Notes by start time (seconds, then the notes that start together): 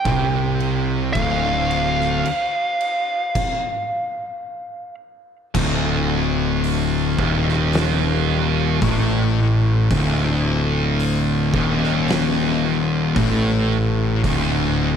Already playing: G5
0.05 C2 C3, kick, crash
0.60 crash
1.13 D1 D2 F5, kick, crash
1.71 crash
2.01 snare
2.25 crash
2.81 crash
3.35 kick, crash
5.55 D1 D2, kick, crash
6.64 open hi-hat
7.19 D#1 D#2, kick
7.49 snare
7.73 snare, open hi-hat
8.82 A1 A2, kick, open hi-hat
9.91 D1 D2, kick, open hi-hat
11.00 open hi-hat
11.54 D#1 D#2, kick
11.84 snare
12.08 snare, open hi-hat
13.16 A1 A2, kick, open hi-hat
14.24 D1 D2, kick, open hi-hat